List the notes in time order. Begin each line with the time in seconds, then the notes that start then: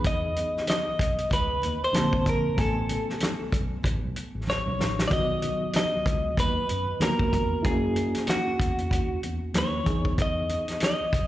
Already playing: E2 E3 B3 D#4 G#4
0.04 D#5, kick, closed hi-hat, muted conga
0.36 closed hi-hat, muted conga
0.57 snare
0.67 D#5, snare, closed hi-hat, high conga
0.87 B1
0.99 B1, kick, closed hi-hat
1.18 closed hi-hat
1.30 C#2 B4, kick, closed hi-hat, muted conga
1.62 D#2, closed hi-hat, muted conga
1.84 C5
1.93 A#1 D3 A#3 C4 A5, snare, closed hi-hat, high conga
2.13 A1, kick
2.25 A#1 A#4, kick, closed hi-hat, high conga
2.55 A1 C#3 A3 B3 G#5, kick, closed hi-hat, muted conga
2.61 A4
2.89 closed hi-hat, muted conga
3.10 snare
3.20 snare, closed hi-hat, high conga
3.41 B1
3.52 B1, kick, closed hi-hat
3.83 A1, kick, closed hi-hat, muted conga
4.04 B1
4.16 closed hi-hat
4.36 A1
4.47 C#5, snare, high conga
4.66 B1, high conga
4.79 A1, snare, high conga
4.99 snare
5.08 D#3 F#3 B3 D5, kick, closed hi-hat
5.12 B1 F#4 D#5, muted conga
5.42 closed hi-hat, muted conga
5.73 D#5, snare, closed hi-hat, high conga
5.94 C#2
6.06 C#2, kick, closed hi-hat
6.37 D#2 B4, kick, closed hi-hat, muted conga
6.69 F#2, closed hi-hat
7.00 D#3 A#3 B3 F#4 A#4, snare, closed hi-hat, high conga
7.19 D#2, kick
7.33 E2, kick, closed hi-hat, high conga
7.62 F#2 G#3 C#4 E4 F#4 G#4, kick, closed hi-hat, muted conga
7.70 A#3
7.96 closed hi-hat, muted conga
8.15 snare, closed hi-hat
8.27 F#4, snare, closed hi-hat, high conga
8.47 E2
8.60 E2, kick, closed hi-hat
8.78 closed hi-hat
8.91 D#2, kick, closed hi-hat, muted conga
9.23 E2, closed hi-hat
9.54 D#2, snare, closed hi-hat, high conga
9.58 C#5
9.84 E2 E3 B3 D#4, kick, closed hi-hat, high conga
9.88 G#4
10.05 kick
10.18 D#5, kick, closed hi-hat, muted conga
10.49 closed hi-hat, muted conga
10.68 snare, closed hi-hat
10.80 snare, closed hi-hat, high conga
10.84 D#5
11.01 B1
11.13 B1, kick, closed hi-hat